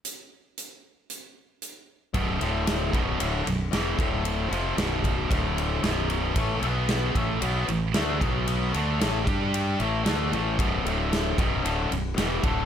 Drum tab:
RD |--------|xxxxxxxx|xxxxxxxx|xxxxxxxx|
HH |x-x-x-x-|--------|--------|--------|
SD |--------|--o---o-|--o---o-|--o---o-|
BD |--------|o--o---o|---oo---|o--o---o|

RD |xxxxxxxx|xxxxxxxx|
HH |--------|--------|
SD |--o---o-|--o---o-|
BD |---o----|o--o---o|